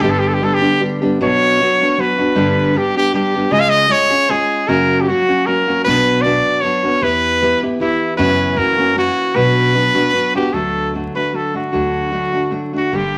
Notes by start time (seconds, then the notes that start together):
0.01 G1 G2 D3 G3 B3 D4 G4
0.10 A4
0.19 G4
0.28 A4
0.34 G4
0.41 G3 B3 D4 G4 A4
0.54 G4
0.61 G3 B3 D4 G4
0.80 G3 B3 D4 G4
1.02 G3 B3 D4 G4
1.21 B2 F#3 B3 D4 F#4 C#5
1.60 F#3 B3 D4 F#4
1.81 B3 D4 F#4
1.98 F#3 B3 D4 F#4 B4
2.18 B3 D4 F#4
2.35 G2 D3 G3 B3 D4 G4
2.74 G3 B3 D4 G4
2.96 G3 B3 D4 G4
3.13 G3 B3 D4 G4
3.35 G3 B3 D4 G4
3.51 C#3 G#3 C#4 F4 G#4 D#5
3.60 F5
3.69 D#5
3.88 G#3 C#4 F4 G#4 C#5
4.10 C#4 F4 G#4
4.29 G#3 C#4 F4 G#4
4.68 F#2 C#3 F#3 A#3 C#4 F#4 A#4
5.01 G4
5.08 F#3 A#3 C#4 F#4
5.28 F#3 A#3 C#4 F#4
5.46 F#3 A#3 C#4 F#4 A#4
5.68 F#3 A#3 C#4 F#4
5.84 B1 B2 F#3 B3 D4 F#4 B4
6.21 F#3 B3 D4 D5
6.26 F#4
6.61 F#3 B3 D4 F#4 C#5
6.83 B3 D4 F#4
7.01 E2 E3 B3 E4 G4 B4
7.42 E3 B3 E4 G4
7.63 B3 E4 G4
7.80 E3 B3 E4 G4
8.17 F#2 C#3 E3 B3 C#4 F#4 B4
8.56 F#2 E3 A#3 C#4 F#4 A#4
8.78 E3 A#3 C#4 F#4
8.96 E3 A#3 C#4 F#4
9.34 B1 B2 F#3 B3 D4 F#4 B4
9.74 F#3 B3 D4 F#4
9.95 B3 D4 F#4
10.13 F#3 B3 D4 F#4
10.35 B3 D4 F#4 G4
10.53 D2 D3 F#3 A3 D4 F#4 A4
10.94 F#3 A3 D4 F#4
11.14 A3 D4 F#4 B4
11.33 F#3 A3 D4 F#4 A4
11.54 A3 D4 F#4
11.72 D2 D3 F#3 A3 D4 F#4
12.11 F#3 A3 D4 F#4
12.33 A3 D4 F#4
12.50 F#3 A3 D4 F#4
12.73 A3 D4 F#4
12.77 F#4
12.91 G1 G2 D3 G3 A#3 D4 G4